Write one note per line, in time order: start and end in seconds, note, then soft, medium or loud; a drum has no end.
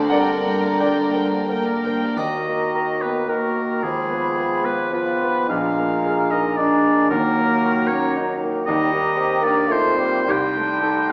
0.00 0.14 D2 medium
0.00 1.84 D3 medium
0.00 0.12 C4 soft
0.00 0.78 C4 soft
0.00 0.13 D4 soft
0.00 1.47 D4 medium
0.00 0.13 F#4 soft
0.00 0.14 A4 soft
0.00 0.10 C5 soft
0.00 0.14 C5 soft
0.00 0.10 D5 medium
0.00 0.11 D5 soft
0.00 0.12 D5 soft
0.00 0.10 F#5 medium
0.00 0.10 A5 soft
0.09 1.98 G1 soft
0.09 1.96 G2 soft
0.09 2.15 G2 soft
0.09 0.27 G3 soft
0.09 1.80 A#4 soft
0.09 0.75 A#4 soft
0.09 0.71 A#4 soft
0.09 0.27 A#4 soft
0.09 0.76 D5 soft
0.09 0.75 F#5 medium
0.09 0.27 G5 soft
0.09 1.84 A#5 soft
0.28 0.46 A#3 soft
0.28 0.46 G4 soft
0.28 0.45 D5 soft
0.44 0.63 G3 soft
0.44 0.99 A#3 soft
0.44 0.63 A#4 soft
0.44 0.63 G5 soft
0.62 0.79 A#3 soft
0.62 0.79 G4 soft
0.62 0.79 D5 soft
0.78 0.96 G3 soft
0.78 1.47 A#3 soft
0.78 1.34 D4 soft
0.78 0.95 A#4 soft
0.78 1.11 A#4 soft
0.78 1.44 D5 soft
0.78 0.94 G5 soft
0.78 1.44 G5 soft
0.82 1.18 D5 soft
0.97 1.14 A#3 soft
0.97 1.14 G4 soft
0.97 1.13 D5 soft
1.13 1.30 G3 soft
1.13 1.69 A#4 soft
1.13 1.30 A#4 soft
1.13 1.51 C5 soft
1.13 1.30 G5 soft
1.29 1.47 A#3 soft
1.29 1.47 G4 soft
1.29 1.47 D5 soft
1.47 1.64 G3 soft
1.47 2.06 A#3 soft
1.47 2.14 A#3 soft
1.47 1.63 A#4 soft
1.47 2.20 A#4 soft
1.47 1.88 A#4 soft
1.47 1.64 G5 soft
1.64 1.84 A#3 soft
1.64 1.83 G4 soft
1.64 1.84 D5 soft
1.84 2.18 D3 soft
1.84 2.02 G3 soft
1.84 2.02 A#4 soft
1.84 2.19 C5 soft
1.84 2.02 G5 soft
2.02 2.18 A#3 soft
2.02 2.18 G4 soft
2.02 2.19 D5 soft
2.17 3.80 D#2 soft
2.17 3.25 D#3 soft
2.17 3.02 D#4 soft
2.17 3.27 F#4 soft
2.17 3.03 D#5 medium
2.17 3.25 A#5 soft
2.17 triangle soft
2.48 2.92 A#3 soft
2.75 3.19 A#4 soft
3.02 3.47 A#3 soft
3.02 3.30 B3 soft
3.02 3.31 B4 soft
3.28 3.85 D#3 soft
3.28 3.84 A#3 soft
3.28 3.87 F#4 soft
3.28 3.74 F#4 soft
3.28 3.85 A#4 soft
3.28 3.83 A#5 soft
3.56 3.84 A#3 soft
3.83 5.45 D#2 soft
3.83 4.90 F3 soft
3.83 4.66 G#3 soft
3.83 4.93 F4 soft
3.83 4.66 G#4 medium
3.83 4.92 B5 soft
4.09 4.54 B3 soft
4.37 4.81 G#4 soft
4.64 5.08 B3 soft
4.64 4.91 B3 soft
4.64 4.93 B4 medium
4.91 5.49 F3 soft
4.91 5.48 B3 soft
4.91 5.38 F4 soft
4.91 5.51 F4 soft
4.91 5.49 B4 medium
4.91 5.49 B5 soft
5.21 5.50 B3 soft
5.48 7.06 A#1 medium
5.48 6.56 G#3 soft
5.48 6.57 D4 soft
5.48 6.31 F4 medium
5.48 6.33 F5 medium
5.48 6.56 A#5 soft
5.78 6.21 A#3 soft
6.05 6.47 G#4 soft
6.31 6.73 A#3 soft
6.31 6.57 D#4 soft
6.31 6.58 D#5 medium
6.57 7.11 G#3 soft
6.57 7.00 D4 soft
6.57 7.11 D4 medium
6.57 7.14 D4 soft
6.57 7.10 D5 medium
6.57 7.09 A#5 soft
6.85 7.11 A#3 soft
7.10 8.63 D#2 medium
7.10 8.66 F#3 soft
7.10 7.89 A#3 medium
7.10 8.49 D#4 soft
7.10 7.89 A#4 medium
7.10 8.36 A#5 soft
7.38 7.79 A#3 soft
7.65 8.06 F#4 soft
7.87 8.31 A#3 soft
7.87 8.16 C#4 medium
7.87 8.14 C#5 medium
8.16 8.57 D#4 soft
8.43 8.67 A#3 soft
8.66 10.25 D#2 medium
8.66 9.18 G3 soft
8.66 8.93 D#4 soft
8.66 9.39 D#4 medium
8.66 9.45 D#5 medium
8.66 9.14 A#5 soft
8.92 9.34 A#3 soft
8.92 9.72 G4 medium
9.16 9.40 C4 soft
9.16 9.59 G4 soft
9.16 9.69 A#5 soft
9.41 9.70 A#3 medium
9.41 9.87 A#3 soft
9.41 9.70 D4 medium
9.41 9.73 D5 medium
9.68 9.96 A3 medium
9.68 10.28 C4 medium
9.68 10.17 D#4 soft
9.68 10.27 F4 medium
9.68 10.33 C5 medium
9.68 10.27 C6 soft
9.96 10.25 G3 medium
9.96 10.27 A#3 soft
10.26 11.12 C2 medium
10.26 11.12 G3 medium
10.26 10.81 D#4 soft
10.26 11.08 G4 medium
10.26 10.81 C6 soft
10.31 11.12 G5 medium
10.57 10.99 A3 soft
10.82 11.12 D#4 medium
10.82 11.12 A4 soft
10.82 11.12 C6 medium